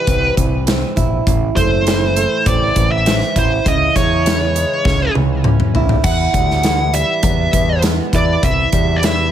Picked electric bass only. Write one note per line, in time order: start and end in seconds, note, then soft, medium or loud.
0.07 0.30 C2 medium
0.37 0.82 C2 medium
0.97 1.20 A#1 medium
1.27 1.49 A1 medium
1.57 2.24 F#1 medium
2.46 2.69 A1 medium
2.76 3.21 A1 medium
3.36 3.59 A1 medium
3.66 3.88 C#2 loud
3.96 4.64 E2 medium
4.85 5.08 C#2 medium
5.15 5.60 C#2 medium
5.74 5.97 A#1 medium
6.04 6.27 E2 medium
6.34 7.02 D2 medium
7.23 7.46 E2 medium
7.54 7.99 E2 medium
8.13 8.36 E2 medium
8.43 8.66 C2 medium
8.73 9.31 E2 medium